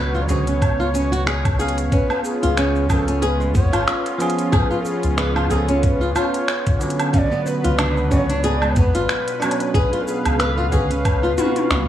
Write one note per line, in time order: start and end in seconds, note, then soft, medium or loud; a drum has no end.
0.00 0.26 C#2 loud
0.00 1.88 B2 medium
0.00 0.26 F#3 loud
0.00 1.88 F#3 medium
0.00 0.25 B3 medium
0.00 1.88 B3 medium
0.00 0.26 C#4 medium
0.00 0.25 D4 medium
0.00 0.14 B4 medium
0.00 0.24 B4 loud
0.00 1.88 C#5 medium
0.14 0.23 F4 medium
0.14 shaker soft
0.22 0.30 D5 medium
0.28 0.61 C#2 medium
0.28 0.43 D3 medium
0.28 0.44 B3 medium
0.28 0.44 C#4 medium
0.28 0.44 F#4 medium
0.28 0.46 G#4 medium
0.28 0.41 C5 loud
0.28 closed hi-hat soft
0.28 shaker medium
0.41 1.59 C#5 loud
0.47 0.78 C#4 medium
0.47 closed hi-hat soft
0.47 shaker soft
0.62 1.88 C#2 medium
0.62 kick loud
0.62 closed hi-hat medium
0.62 low woodblock medium
0.62 shaker soft
0.80 0.88 F4 medium
0.80 shaker soft
0.94 1.11 C#4 medium
0.94 closed hi-hat soft
0.94 shaker medium
1.12 1.26 F#4 medium
1.12 closed hi-hat soft
1.12 shaker soft
1.26 1.44 G#4 medium
1.26 finger snap loud
1.26 shaker soft
1.45 kick loud
1.45 closed hi-hat medium
1.45 low woodblock medium
1.45 shaker soft
1.59 2.86 B3 medium
1.59 2.87 C#4 medium
1.59 1.77 G#4 medium
1.59 2.87 F5 medium
1.59 closed hi-hat soft
1.59 shaker medium
1.68 closed hi-hat medium
1.78 closed hi-hat soft
1.78 shaker soft
1.92 11.88 B3 medium
1.92 2.09 C#4 medium
1.92 7.10 C#4 medium
1.92 7.10 F4 medium
1.92 2.22 B4 loud
1.92 kick loud
1.92 closed hi-hat medium
1.92 shaker soft
2.10 2.18 B3 medium
2.10 low woodblock medium
2.10 shaker soft
2.24 2.85 G#4 loud
2.24 shaker medium
2.43 2.86 C#2 medium
2.43 2.56 F4 medium
2.43 closed hi-hat soft
2.43 shaker soft
2.57 2.88 C#4 medium
2.57 finger snap medium
2.57 closed hi-hat soft
2.57 shaker soft
2.76 shaker soft
2.89 3.51 C#2 loud
2.89 3.04 F3 medium
2.89 3.04 B3 medium
2.89 3.06 C#4 medium
2.89 3.05 C#4 medium
2.89 3.05 G#4 medium
2.89 2.95 B4 medium
2.89 kick medium
2.89 closed hi-hat soft
2.89 low woodblock medium
2.89 shaker medium
2.94 3.24 A4 loud
3.07 3.21 C#4 medium
3.07 closed hi-hat soft
3.07 shaker soft
3.22 3.39 G#4 loud
3.22 3.55 B4 loud
3.22 closed hi-hat medium
3.22 shaker soft
3.40 3.54 G#3 medium
3.40 shaker soft
3.54 3.70 F2 medium
3.54 3.71 B3 medium
3.54 4.16 C#5 loud
3.54 kick loud
3.54 closed hi-hat soft
3.54 shaker medium
3.73 3.85 G#1 loud
3.73 4.36 F4 medium
3.73 closed hi-hat soft
3.73 low woodblock medium
3.73 shaker soft
3.88 finger snap loud
3.88 shaker soft
4.06 closed hi-hat medium
4.06 shaker soft
4.18 5.46 F3 medium
4.18 5.47 B3 medium
4.18 5.47 C#4 medium
4.18 5.48 G#4 loud
4.18 closed hi-hat soft
4.18 shaker medium
4.30 closed hi-hat medium
4.39 closed hi-hat soft
4.39 shaker soft
4.52 4.70 G#4 loud
4.52 4.58 C#5 medium
4.52 kick loud
4.52 closed hi-hat soft
4.52 low woodblock medium
4.52 shaker soft
4.57 4.87 B4 loud
4.70 4.79 F4 medium
4.70 shaker soft
4.85 5.53 G#4 loud
4.85 shaker medium
5.03 5.47 C#2 loud
5.03 closed hi-hat soft
5.03 shaker soft
5.17 5.35 B4 loud
5.17 finger snap loud
5.17 closed hi-hat medium
5.17 shaker soft
5.36 5.44 F4 medium
5.36 low woodblock medium
5.36 shaker soft
5.50 6.12 C#2 medium
5.50 5.65 F3 medium
5.50 5.65 B3 medium
5.50 5.66 C#4 medium
5.50 5.68 G#4 medium
5.50 5.66 G#4 medium
5.50 5.86 A4 loud
5.50 closed hi-hat soft
5.50 shaker medium
5.68 5.99 C#4 medium
5.68 closed hi-hat soft
5.68 shaker soft
5.83 5.89 C#5 loud
5.83 kick loud
5.83 closed hi-hat medium
5.83 shaker soft
5.88 6.18 B4 loud
6.01 6.09 F4 medium
6.01 shaker soft
6.15 6.79 F4 medium
6.15 6.81 C#5 loud
6.15 closed hi-hat soft
6.15 low woodblock medium
6.15 shaker medium
6.34 closed hi-hat soft
6.34 shaker soft
6.48 finger snap loud
6.48 shaker soft
6.67 kick loud
6.67 closed hi-hat medium
6.67 shaker soft
6.79 8.07 D3 medium
6.79 8.09 F#3 loud
6.79 8.08 B3 medium
6.79 8.08 C#4 medium
6.79 closed hi-hat soft
6.79 shaker medium
6.90 closed hi-hat medium
7.00 closed hi-hat soft
7.00 low woodblock medium
7.00 shaker soft
7.13 11.88 B2 medium
7.13 9.72 F#3 medium
7.13 7.31 C#4 medium
7.13 11.88 B4 medium
7.13 7.19 F5 loud
7.13 kick loud
7.13 closed hi-hat medium
7.13 shaker soft
7.18 7.48 D5 loud
7.31 7.40 B3 medium
7.31 shaker soft
7.46 8.13 B4 loud
7.46 shaker medium
7.64 8.08 C#2 loud
7.64 7.78 F4 medium
7.64 closed hi-hat soft
7.64 shaker soft
7.78 8.10 D4 medium
7.78 finger snap medium
7.78 closed hi-hat medium
7.78 low woodblock medium
7.78 shaker soft
7.97 shaker soft
8.10 8.73 C#2 loud
8.10 8.26 D3 medium
8.10 8.26 B3 medium
8.10 8.28 C#4 medium
8.10 8.27 C#4 medium
8.10 8.27 F#4 medium
8.10 8.18 D5 loud
8.10 kick medium
8.10 closed hi-hat soft
8.10 shaker medium
8.17 8.46 C#5 loud
8.29 8.43 D4 medium
8.29 closed hi-hat soft
8.29 shaker soft
8.44 8.60 G#4 loud
8.44 8.79 D5 loud
8.44 closed hi-hat medium
8.44 shaker soft
8.62 8.76 G#3 medium
8.62 low woodblock medium
8.62 shaker soft
8.76 8.92 F2 medium
8.76 8.93 B3 medium
8.76 9.44 B4 loud
8.76 kick loud
8.76 closed hi-hat soft
8.76 shaker medium
8.95 9.07 G#1 loud
8.95 9.58 F4 medium
8.95 closed hi-hat soft
8.95 shaker soft
9.09 finger snap loud
9.09 shaker soft
9.28 closed hi-hat medium
9.28 shaker soft
9.40 10.70 F#3 loud
9.40 10.68 B3 medium
9.40 10.69 C#4 medium
9.40 10.68 D4 medium
9.40 9.74 C#5 loud
9.40 closed hi-hat soft
9.40 low woodblock medium
9.40 shaker medium
9.51 closed hi-hat medium
9.60 closed hi-hat soft
9.60 shaker soft
9.74 9.92 G#4 loud
9.74 10.09 B4 loud
9.74 11.88 F5 medium
9.74 kick loud
9.74 closed hi-hat medium
9.74 shaker soft
9.93 10.01 F4 medium
9.93 closed hi-hat soft
9.93 shaker soft
10.08 10.42 G#4 medium
10.08 shaker medium
10.25 10.69 C#2 loud
10.25 closed hi-hat soft
10.25 low woodblock medium
10.25 shaker soft
10.39 10.57 B4 loud
10.39 10.46 B4 medium
10.39 finger snap loud
10.39 closed hi-hat medium
10.39 shaker soft
10.45 10.74 A4 medium
10.58 10.66 F4 medium
10.58 shaker soft
10.72 11.34 C#2 medium
10.72 10.87 D3 medium
10.72 10.87 B3 medium
10.72 10.87 C#4 medium
10.72 10.88 F#4 medium
10.72 10.90 G#4 medium
10.72 11.88 B4 loud
10.72 kick medium
10.72 closed hi-hat soft
10.72 shaker medium
10.90 11.21 C#4 medium
10.90 closed hi-hat soft
10.90 shaker soft
11.05 kick loud
11.05 closed hi-hat medium
11.05 low woodblock medium
11.05 shaker soft
11.23 11.31 F4 medium
11.23 shaker soft
11.38 11.88 F#4 medium
11.38 closed hi-hat soft
11.38 high tom medium
11.38 shaker medium
11.56 closed hi-hat soft
11.56 high tom medium
11.56 shaker soft
11.70 11.85 C#2 loud
11.70 finger snap loud
11.70 mid tom medium
11.70 shaker soft